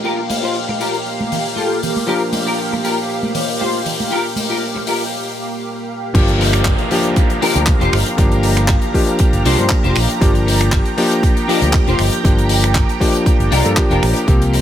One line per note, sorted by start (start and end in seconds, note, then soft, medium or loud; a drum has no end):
0.00 2.05 F3 medium
0.00 2.05 A#3 medium
0.00 6.11 A#3 medium
0.00 2.05 D4 medium
0.00 0.18 F4 loud
0.00 2.06 G4 medium
0.00 6.10 G4 medium
0.00 6.11 F5 medium
0.04 0.18 G4 medium
0.04 0.18 A#4 loud
0.04 tambourine soft
0.29 muted clean electric guitar stroke soft
0.29 open hi-hat loud
0.29 tambourine medium
0.29 high conga medium
0.42 0.55 F4 medium
0.42 0.55 G4 medium
0.42 0.56 C5 medium
0.42 tambourine soft
0.55 tambourine soft
0.68 muted clean electric guitar stroke loud
0.68 high conga medium
0.80 0.94 F4 medium
0.80 0.94 G4 medium
0.80 0.94 A#4 medium
0.80 open hi-hat medium
0.80 tambourine medium
0.94 tambourine soft
1.05 muted clean electric guitar stroke soft
1.05 tambourine soft
1.20 high conga medium
1.32 open hi-hat medium
1.32 tambourine medium
1.32 low conga medium
1.44 muted clean electric guitar stroke soft
1.44 tambourine soft
1.56 1.76 F4 medium
1.56 1.76 G4 medium
1.56 1.77 A4 medium
1.56 tambourine soft
1.56 high conga medium
1.83 open hi-hat medium
1.83 tambourine medium
1.83 low conga medium
1.95 muted clean electric guitar stroke soft
1.95 tambourine soft
1.95 high conga medium
2.07 5.12 F3 medium
2.07 5.13 A#3 medium
2.07 5.13 D4 medium
2.07 2.21 F4 loud
2.07 2.21 G4 medium
2.07 5.13 G4 medium
2.07 2.22 A#4 loud
2.07 tambourine soft
2.32 muted clean electric guitar stroke soft
2.32 open hi-hat loud
2.32 tambourine medium
2.32 high conga medium
2.46 2.58 F4 medium
2.46 2.59 G4 medium
2.46 2.59 A#4 medium
2.46 tambourine soft
2.58 tambourine soft
2.71 muted clean electric guitar stroke loud
2.71 high conga medium
2.83 2.97 F4 medium
2.83 2.97 G4 medium
2.83 2.98 A#4 medium
2.83 open hi-hat medium
2.83 tambourine medium
2.98 tambourine soft
3.08 muted clean electric guitar stroke soft
3.08 tambourine soft
3.23 high conga medium
3.35 open hi-hat loud
3.35 tambourine medium
3.35 low conga medium
3.48 muted clean electric guitar stroke soft
3.48 tambourine soft
3.59 3.79 F4 medium
3.59 3.80 G4 medium
3.59 3.80 C5 medium
3.59 tambourine soft
3.59 high conga medium
3.86 open hi-hat medium
3.86 tambourine medium
3.86 low conga medium
3.98 muted clean electric guitar stroke soft
3.98 tambourine soft
3.98 high conga medium
4.10 4.24 F4 loud
4.10 4.25 G4 medium
4.10 4.25 A#4 loud
4.10 tambourine soft
4.36 muted clean electric guitar stroke soft
4.36 open hi-hat loud
4.36 tambourine medium
4.36 high conga medium
4.49 4.62 F4 medium
4.49 4.62 G4 medium
4.49 4.63 A#4 medium
4.49 tambourine soft
4.62 tambourine soft
4.75 muted clean electric guitar stroke loud
4.75 high conga medium
4.87 5.01 F4 medium
4.87 5.01 G4 medium
4.87 5.01 A#4 medium
4.87 open hi-hat loud
4.87 tambourine medium
5.01 tambourine soft
6.14 6.72 G1 loud
6.14 6.88 F3 medium
6.14 6.88 A#3 medium
6.14 6.88 D4 medium
6.14 14.24 G4 medium
6.14 6.89 G4 loud
6.14 10.18 F5 medium
6.14 14.25 A#5 medium
6.14 kick loud
6.14 closed hi-hat loud
6.14 crash loud
6.14 downlifter medium
6.28 closed hi-hat soft
6.40 muted clean electric guitar stroke loud
6.40 open hi-hat loud
6.53 finger snap medium
6.53 muted clean electric guitar stroke medium
6.53 closed hi-hat medium
6.65 muted clean electric guitar stroke soft
6.65 kick loud
6.65 clap loud
6.65 closed hi-hat medium
6.79 closed hi-hat medium
6.91 7.39 F3 medium
6.91 7.40 A#3 medium
6.91 7.40 D4 medium
6.91 7.40 G4 loud
6.91 open hi-hat loud
7.04 closed hi-hat medium
7.16 kick loud
7.16 closed hi-hat loud
7.30 closed hi-hat medium
7.41 7.52 F3 medium
7.41 7.52 A#3 medium
7.41 7.61 D4 loud
7.41 7.52 D4 medium
7.41 7.61 F4 loud
7.41 7.61 G4 loud
7.41 7.53 G4 medium
7.41 7.62 A#4 loud
7.41 open hi-hat loud
7.54 7.72 D2 medium
7.54 8.15 F3 medium
7.54 8.15 A#3 medium
7.54 8.15 D4 medium
7.54 8.16 G4 medium
7.54 closed hi-hat medium
7.67 kick loud
7.67 clap loud
7.67 closed hi-hat loud
7.80 7.89 F1 medium
7.80 7.92 D4 medium
7.80 7.93 F4 medium
7.80 7.93 G4 medium
7.80 7.93 C5 loud
7.80 closed hi-hat medium
7.93 8.02 G1 medium
7.93 finger snap medium
7.93 open hi-hat loud
8.05 muted clean electric guitar stroke soft
8.05 closed hi-hat medium
8.17 8.75 G1 loud
8.17 8.91 F3 medium
8.17 8.91 A#3 medium
8.17 8.92 D4 medium
8.17 8.92 G4 loud
8.17 kick loud
8.17 closed hi-hat loud
8.32 closed hi-hat medium
8.43 muted clean electric guitar stroke loud
8.43 open hi-hat loud
8.56 finger snap medium
8.56 muted clean electric guitar stroke medium
8.56 closed hi-hat medium
8.68 muted clean electric guitar stroke soft
8.68 kick loud
8.68 clap loud
8.68 closed hi-hat loud
8.82 closed hi-hat medium
8.94 9.43 F3 medium
8.94 9.43 A#3 medium
8.94 9.43 D4 medium
8.94 9.43 G4 loud
8.94 kick medium
8.94 open hi-hat loud
9.07 closed hi-hat medium
9.19 kick loud
9.19 closed hi-hat loud
9.33 9.41 G1 medium
9.33 closed hi-hat medium
9.45 9.54 C2 loud
9.45 9.55 F3 medium
9.45 9.55 A#3 medium
9.45 9.64 D4 loud
9.45 9.56 D4 medium
9.45 9.65 F4 loud
9.45 9.65 G4 loud
9.45 9.56 G4 medium
9.45 9.65 C5 loud
9.45 open hi-hat loud
9.57 9.67 G2 medium
9.57 10.18 F3 medium
9.57 10.18 A#3 medium
9.57 10.19 D4 medium
9.57 10.19 G4 medium
9.57 closed hi-hat medium
9.69 kick loud
9.69 clap loud
9.69 closed hi-hat medium
9.83 9.92 F1 medium
9.83 9.96 D4 medium
9.83 9.96 F4 medium
9.83 9.96 G4 medium
9.83 9.97 C5 loud
9.83 closed hi-hat medium
9.95 10.05 A#1 medium
9.95 finger snap medium
9.95 open hi-hat loud
10.09 muted clean electric guitar stroke soft
10.09 closed hi-hat soft
10.21 10.78 G1 loud
10.21 10.94 F3 medium
10.21 10.95 A#3 medium
10.21 10.95 D4 medium
10.21 10.96 G4 loud
10.21 14.24 G5 medium
10.21 kick loud
10.21 closed hi-hat medium
10.35 closed hi-hat medium
10.46 muted clean electric guitar stroke loud
10.46 open hi-hat loud
10.60 finger snap medium
10.60 muted clean electric guitar stroke medium
10.60 closed hi-hat medium
10.72 kick loud
10.72 clap loud
10.72 closed hi-hat medium
10.86 closed hi-hat medium
10.97 11.46 F3 loud
10.97 11.46 A#3 medium
10.97 11.46 D4 medium
10.97 11.46 G4 loud
10.97 open hi-hat loud
11.11 closed hi-hat medium
11.23 kick loud
11.23 closed hi-hat medium
11.37 closed hi-hat medium
11.48 11.59 F3 medium
11.48 11.59 A#3 medium
11.48 11.68 D4 loud
11.48 11.59 D4 medium
11.48 11.68 F4 loud
11.48 11.59 G4 medium
11.48 11.68 G4 medium
11.48 11.69 A#4 loud
11.48 open hi-hat loud
11.61 11.78 D2 medium
11.61 12.22 F3 medium
11.61 12.22 A#3 medium
11.61 12.22 D4 medium
11.61 12.23 G4 medium
11.61 closed hi-hat medium
11.73 kick loud
11.73 clap loud
11.73 closed hi-hat medium
11.87 11.95 F1 medium
11.87 11.99 D4 medium
11.87 11.99 F4 medium
11.87 12.00 G4 medium
11.87 12.00 C5 loud
11.87 closed hi-hat medium
11.99 12.08 G1 medium
11.99 finger snap medium
11.99 open hi-hat loud
12.12 muted clean electric guitar stroke soft
12.12 closed hi-hat medium
12.24 12.82 G1 loud
12.24 12.98 F3 medium
12.24 12.98 A#3 medium
12.24 12.98 D4 medium
12.24 12.99 G4 loud
12.24 kick loud
12.24 closed hi-hat loud
12.39 closed hi-hat medium
12.49 muted clean electric guitar stroke loud
12.49 open hi-hat loud
12.63 finger snap medium
12.63 muted clean electric guitar stroke medium
12.63 closed hi-hat medium
12.75 muted clean electric guitar stroke soft
12.75 kick loud
12.75 clap loud
12.75 closed hi-hat medium
12.89 closed hi-hat medium
13.00 13.49 F3 medium
13.00 13.49 A#3 medium
13.00 13.49 D4 medium
13.00 13.50 G4 loud
13.00 kick medium
13.00 open hi-hat loud
13.15 closed hi-hat soft
13.26 kick loud
13.26 closed hi-hat loud
13.40 13.48 G1 medium
13.40 closed hi-hat soft
13.51 13.61 C2 loud
13.51 13.71 D4 loud
13.51 13.71 F4 loud
13.51 13.71 G4 loud
13.51 13.72 A#4 loud
13.51 open hi-hat loud
13.64 13.73 G2 loud
13.64 13.74 F3 medium
13.64 13.74 A#3 medium
13.64 13.74 D4 medium
13.64 13.75 A4 medium
13.64 closed hi-hat medium
13.77 14.25 F3 medium
13.77 14.25 A#3 medium
13.77 14.25 D4 medium
13.77 14.26 G4 loud
13.77 kick loud
13.77 clap loud
13.77 closed hi-hat medium
13.90 13.99 F1 medium
13.90 14.02 D4 medium
13.90 14.03 F4 medium
13.90 14.03 G4 medium
13.90 14.03 A#4 loud
13.90 closed hi-hat medium
14.02 14.12 A#1 medium
14.02 finger snap medium
14.02 open hi-hat loud
14.16 muted clean electric guitar stroke soft
14.16 closed hi-hat medium
14.27 14.61 C2 medium
14.27 14.61 F3 medium
14.27 14.61 A#3 medium
14.27 14.61 C4 medium
14.27 14.61 G4 loud
14.27 14.61 F5 medium
14.27 14.61 C6 medium
14.27 kick loud
14.27 closed hi-hat medium
14.42 closed hi-hat medium
14.53 muted clean electric guitar stroke loud
14.53 open hi-hat loud